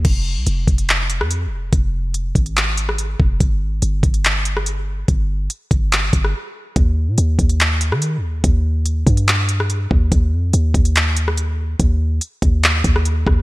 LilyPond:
<<
  \new Staff \with { instrumentName = "808-style bass" } { \clef bass \time 4/4 \key f \minor \tempo 4 = 143 f,,8. c,16 f,,8 f,,4~ f,,16 f,8~ f,32 f,,8~ f,,32 | f,,4. aes,,2 f,,8 | g,,8 aes,,8 g,,8 g,,2~ g,,8 | g,,4 r8 g,,4 g,,8 r4 |
ees,8. bes,16 ees,8 ees,4~ ees,16 ees8~ ees32 ees,8~ ees,32 | ees,4. g,2 ees,8 | ees,8 f,8 ees,8 ees,2~ ees,8 | ees,4 r8 ees,4 ees,4 ees,8 | }
  \new DrumStaff \with { instrumentName = "Drums" } \drummode { \time 4/4 <cymc hh bd>4 hh8 <hh bd>16 hh16 <hc hh>8 hh16 ss16 hh4 | <hh bd>4 hh8 <hh hho bd>16 hh16 <hc hh>8 hh16 ss16 hh8 bd8 | <hh bd>4 hh8 <hh bd>16 hh16 <hc hh>8 hh16 ss16 hh4 | <hh bd>4 hh8 <hh bd>8 <hc hh>8 <hh bd>16 ss16 r4 |
<hh bd>4 hh8 <hh bd>16 hh16 <hc hh>8 hh16 ss16 hh4 | <hh bd>4 hh8 <hh hho bd>16 hh16 <hc hh>8 hh16 ss16 hh8 bd8 | <hh bd>4 hh8 <hh bd>16 hh16 <hc hh>8 hh16 ss16 hh4 | <hh bd>4 hh8 <hh bd>8 <hc hh>8 <hh bd>16 ss16 hh8 <bd ss>8 | }
>>